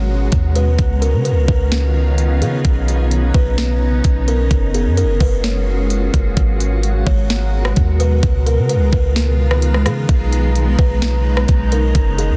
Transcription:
Already playing: G#1 B2 G#3 B3 C#4 F#4 C#5 F#5 A#5
0.32 D#2, kick, closed hi-hat
0.56 B4, closed hi-hat
0.79 C#2 D#3 B3 C#4 F4 D#5 F5, kick, closed hi-hat
1.02 A#4, closed hi-hat
1.14 C#3
1.25 B4, closed hi-hat
1.31 C#2
1.48 C#2 B4, kick
1.72 snare, closed hi-hat
2.18 closed hi-hat
2.41 C#3 G#4, closed hi-hat
2.64 B1 C#3 C#4 D#4, kick, closed hi-hat
2.88 closed hi-hat
3.11 closed hi-hat
3.34 B1 B4, kick
3.58 snare, closed hi-hat
4.04 B1, kick, closed hi-hat
4.28 A#4, closed hi-hat
4.51 F#1 G#3 A#3 F4 F#4 G#4 F5, kick, closed hi-hat
4.74 G#4, closed hi-hat
4.86 F#2
4.97 A#4, closed hi-hat
5.03 F#1
5.20 F#1 B4, kick, open hi-hat
5.44 C#5, snare, closed hi-hat
5.90 closed hi-hat
6.14 F#1, kick, closed hi-hat
6.37 G#1 B2 G#3 B3 F#4 A#4 F#5, kick, closed hi-hat
6.60 closed hi-hat
6.83 closed hi-hat
7.07 G#1 C#5, kick
7.30 snare, closed hi-hat
7.65 cross-stick
7.76 D#2, kick, closed hi-hat
8.00 B4, closed hi-hat
8.23 C#2 D#3 G#3 B3 D#4 F4 B4 F5 A#5, kick, closed hi-hat
8.46 A#4, closed hi-hat
8.58 C#3
8.69 B4, closed hi-hat
8.75 C#2
8.93 C#2 B4, kick
9.16 snare, closed hi-hat
9.51 cross-stick
9.62 closed hi-hat
9.74 cross-stick
9.86 C#3 G#4, cross-stick, closed hi-hat
10.09 B1 C#3 D#4 C#5, kick, closed hi-hat
10.33 closed hi-hat
10.56 closed hi-hat
10.79 B1 B4, kick
11.02 snare, closed hi-hat
11.37 cross-stick
11.48 B1, kick, closed hi-hat
11.72 A#4, closed hi-hat
11.95 F#1 G#4 F5, kick, closed hi-hat
12.18 G#4, closed hi-hat
12.30 F#2

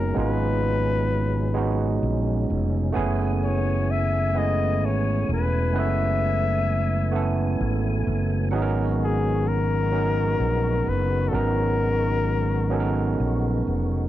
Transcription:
Already playing: F#1 C#3 F#3 G#3 B3 C#4 D#4 F#4 A#4
0.14 G#1 G#3 B3 C#4 D#4 F4
0.19 B4
1.54 G#3 B3 C#4 D#4 F#4
2.03 A#1
2.50 F1
2.92 F#1 E3 A3 B3 C#4 E4 G#4 G#5
3.44 C#5
3.91 E5
4.33 G#3 B3 C#4 E4
4.37 A3 G#4 D#5
4.82 G#1 C#5
5.29 E1 B4
5.72 F#1 G#3 B3 C#4 E4 B4
5.79 A3 E5
7.12 A3 B3 C#4 E4
7.16 A4
7.61 G#1
8.07 F#1
8.51 G#1 C#3 F#3 G#3 B3 C#4 D#4 F#4
8.55 G#4
8.62 A#4
9.04 G#4
9.48 A#4
9.91 F#3 B3 C#4 D#4
9.95 A#4
10.40 A#1
10.87 F#1 B4
11.29 F#3 B3 C#4 A4
11.33 G#1 D#4 A#4
12.70 F#3 B3 C#4 D#4 A4
12.80 A#4
13.20 A#1
13.67 F1

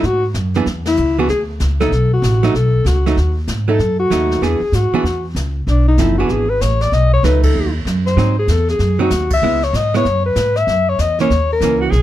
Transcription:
0.03 G#2 F#4, brush sweep, snare
0.34 F#2, snare, hi-hat pedal
0.54 E3 B3 D4 G#4, snare
0.66 E2, brush sweep, snare
0.85 E4, snare, ride
0.97 C#2, hi-hat pedal
1.19 E3 B3 D4 F#4 G#4
1.28 D2 G#4, brush sweep, snare
1.60 C#2, snare, hi-hat pedal
1.80 F#3 A3 D#4 A4, snare
1.91 B1, brush sweep, snare
2.13 F#4
2.22 A1, snare, hi-hat pedal
2.43 F#3 A3 D#4, snare
2.54 B1 A4, brush sweep, snare
2.85 C#2 F#4, snare, hi-hat pedal
3.06 F#3 A3 D#4, snare
3.17 D#2, brush sweep, snare
3.48 G#2, snare, hi-hat pedal
3.68 F#3 A3 D#4 A4
3.79 F#2, brush sweep, snare
3.99 F#4
4.10 D#2 F#3 A3 D#4, snare, hi-hat pedal
4.31 snare
4.41 E2 E3 B3 D4 G#4, brush sweep, snare
4.60 muted upright bass stroke
4.72 G#2 F#4, snare, hi-hat pedal
4.92 E3 B3 D4 G#4, muted upright bass stroke
5.03 E2, brush sweep, snare
5.35 C#2, snare, hi-hat pedal
5.67 B1 D4, brush sweep, snare
5.88 D#4
5.98 F#1 F3 C4 D#4 E4 A4, snare, hi-hat pedal
6.18 E3 B3 D4 F#4 G#4
6.29 G#1 G#4, brush sweep, snare
6.50 B4
6.61 A1 C#5, snare, hi-hat pedal
6.81 D5, snare
6.92 B1 D#5, brush sweep, snare
7.13 C#5
7.23 C#2 F#3 A3 D#4 B4, snare, hi-hat pedal
7.43 A4, kick, ride
7.55 D#2, brush sweep
7.85 F#2, snare, hi-hat pedal
8.06 C5, snare
8.16 G#2 F#3 C4 D#4, brush sweep, snare
8.39 G#4
8.48 E2 A4, snare, hi-hat pedal
8.68 G#4, snare
8.79 F#2, brush sweep, snare
8.99 F#3 C4 D#4 F#4
9.10 D#2, snare, hi-hat pedal
9.30 E5, kick, ride
9.42 C#2 G#3 B3 E4, brush sweep
9.62 C#5, snare
9.73 G#2 D#5, snare, hi-hat pedal
9.94 G#3 B3 E4 C#5, snare
10.05 F#2, brush sweep, snare
10.25 B4
10.36 G#2, snare, hi-hat pedal
10.56 E5, snare
10.67 F#2, brush sweep, snare
10.89 C#5
10.99 E2 D#5, snare, hi-hat pedal
11.19 E3 A#3 C#4 C#5, snare
11.30 D#2, brush sweep, snare
11.53 A#4
11.60 C#2 E3 A#3, snare, hi-hat pedal
11.64 C#4
11.81 F#4
11.91 B1 G#4, brush sweep, snare

